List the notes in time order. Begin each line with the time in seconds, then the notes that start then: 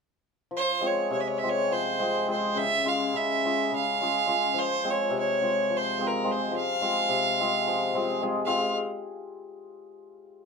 0.51 F3
0.57 C5
0.81 G#3 C4 F4 G#4
0.86 C#5
1.10 C3 C#5
1.20 E5
1.27 C#5
1.38 E5
1.43 G#3 C4 F4 G#4
1.49 C#5
1.71 F3 C5
1.99 G#3 C4 F4 G#4
2.28 G#3 C4 F4 G#4 C5
2.55 C#3 E5
2.85 G#3 C#4 F4 G#4 F5
3.14 C#3 E5
3.45 G#3 C#4 F4 G#4
3.72 C#3 F5
4.01 G#3 C#4 F4 G#4
4.26 G#3 C#4 F4 G#4
4.54 F3
4.58 C5
4.84 G#3 C4 F4 G#4
4.90 C#5
5.10 C3
5.19 C#5
5.42 G#3 C4 F4 G#4
5.70 F3
5.77 C5
5.99 G#3 C4 F4 G#4
6.07 A#4
6.24 G#3 C4 F4 G#4
6.31 C5
6.51 F3
6.56 F5
6.81 G#3 C4 F4 G#4
7.09 C3
7.40 G#3 C4 F4 G#4
7.67 F3
7.95 G#3 C4 F4 G#4
8.22 G#3 C4 F4 G#4
8.45 G#3 C4 F4 G#4 F5